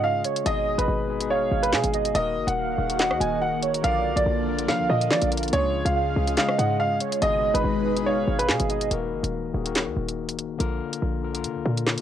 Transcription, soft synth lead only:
0.00 0.21 D#5 loud
0.25 0.45 C#5 medium
0.46 0.86 D#5 loud
1.31 1.90 F5 loud
1.94 2.14 D#5 medium
2.58 2.97 F5 medium
3.00 3.59 D#5 loud
3.63 3.83 C#5 medium
3.84 4.24 D5 loud
4.69 5.49 F5 loud
5.95 6.35 F5 medium
6.37 6.97 D#5 loud
7.01 7.21 C#5 medium
7.22 7.62 D#5 loud
8.07 8.66 F5 loud
8.70 8.90 D#5 medium

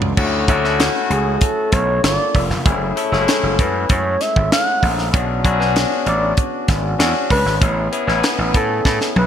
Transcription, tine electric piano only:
0.00 0.17 A3 medium
0.00 0.17 C#4 medium
0.00 0.20 D4 medium
0.00 0.19 F4 medium
0.00 0.18 F#4 medium
0.17 0.44 A3 medium
0.17 0.44 C#4 medium
0.17 0.44 E4 medium
0.17 0.44 F#4 loud
0.48 0.61 A3 medium
0.48 0.62 C#4 medium
0.48 0.62 E4 medium
0.48 0.62 F#4 loud
0.64 1.69 A3 medium
0.64 1.69 C#4 medium
0.64 1.70 E4 medium
0.64 1.70 F#4 medium
2.03 2.56 A#3 medium
2.03 2.56 D4 medium
2.03 2.57 F4 medium
2.03 2.57 A4 medium
2.65 2.92 A3 medium
2.65 2.92 C#4 medium
2.65 2.92 E4 medium
2.65 2.92 G#4 loud
2.96 3.09 A3 medium
2.96 3.10 C#4 medium
2.96 3.10 E4 medium
2.96 3.10 A4 loud
3.11 3.18 G#3 medium
3.11 4.17 C#4 medium
3.11 4.17 E4 medium
3.11 4.18 G#4 loud
3.18 4.20 A3 loud
5.13 5.40 C#4 medium
5.13 5.40 D4 medium
5.13 5.40 F#4 medium
5.13 5.40 G#4 loud
5.44 5.57 C#4 medium
5.44 5.57 D4 medium
5.44 5.58 F#4 medium
5.44 5.58 G#4 loud
5.59 6.65 B3 medium
5.59 6.65 D4 medium
5.59 6.65 F#4 medium
5.59 6.65 G#4 loud
6.99 7.52 C#4 medium
6.99 7.52 D4 medium
6.99 7.52 F#4 medium
6.99 7.52 G#4 loud
7.61 7.87 B3 medium
7.61 7.87 C#4 medium
7.61 7.88 E4 medium
7.61 7.88 G#4 medium
7.92 8.05 B3 medium
7.92 8.05 C#4 medium
7.92 8.06 E4 medium
7.92 8.06 G#4 loud
8.07 9.13 B3 loud
8.07 9.13 C#4 medium
8.07 9.13 E4 medium
8.07 9.13 G#5 loud

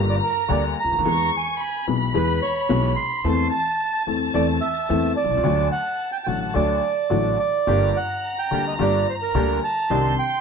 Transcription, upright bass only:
0.00 0.18 G1 medium
0.50 0.73 D2 medium
0.85 0.90 C#2 medium
0.91 0.98 D2 medium
0.98 1.05 D#2 medium
1.05 1.28 E2 loud
1.88 2.10 B1 medium
2.15 2.38 E2 loud
2.70 2.92 B1 loud
3.25 3.47 E2 medium
4.07 4.30 E2 medium
4.35 4.57 E2 loud
4.90 5.13 E2 loud
5.24 5.30 B1 medium
5.31 5.37 C2 medium
5.38 5.44 C#2 medium
5.44 5.68 D2 loud
6.27 6.51 A1 medium
6.56 6.79 D2 medium
7.11 7.35 A1 loud
7.67 7.91 G1 loud
8.52 8.75 D2 medium
8.80 9.03 G1 loud
9.35 9.58 D2 loud
9.90 10.14 C2 medium

